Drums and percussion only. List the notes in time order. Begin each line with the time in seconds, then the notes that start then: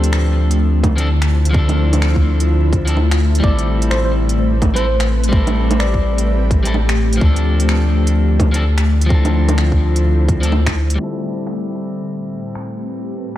0.04 closed hi-hat
0.13 finger snap
0.51 closed hi-hat
0.84 kick, closed hi-hat, low bongo
0.98 closed hi-hat
1.22 finger snap, closed hi-hat
1.45 closed hi-hat
1.54 kick
1.69 closed hi-hat, low bongo
1.93 closed hi-hat, low bongo
2.02 finger snap
2.16 kick
2.40 closed hi-hat
2.73 kick, closed hi-hat
2.87 closed hi-hat
2.97 low bongo
3.11 finger snap, closed hi-hat
3.35 closed hi-hat
3.44 kick
3.59 closed hi-hat
3.82 closed hi-hat
3.91 finger snap
4.29 closed hi-hat
4.62 kick, closed hi-hat, low bongo
4.76 closed hi-hat
5.00 finger snap, closed hi-hat
5.24 closed hi-hat
5.33 kick
5.47 closed hi-hat, low bongo
5.71 closed hi-hat, low bongo
5.80 finger snap
5.94 kick
6.18 closed hi-hat
6.51 kick, closed hi-hat
6.65 closed hi-hat
6.74 low bongo
6.89 finger snap, closed hi-hat
7.13 closed hi-hat
7.21 kick
7.36 closed hi-hat
7.60 closed hi-hat
7.69 finger snap
8.07 closed hi-hat
8.40 kick, closed hi-hat, low bongo
8.54 closed hi-hat
8.78 finger snap, closed hi-hat
9.01 closed hi-hat
9.10 kick
9.25 closed hi-hat, low bongo
9.49 closed hi-hat, low bongo
9.58 finger snap
9.72 kick
9.96 closed hi-hat
10.28 kick, closed hi-hat
10.43 closed hi-hat
10.52 low bongo
10.66 finger snap, kick, closed hi-hat, low bongo
10.90 closed hi-hat
11.47 finger snap
12.55 finger snap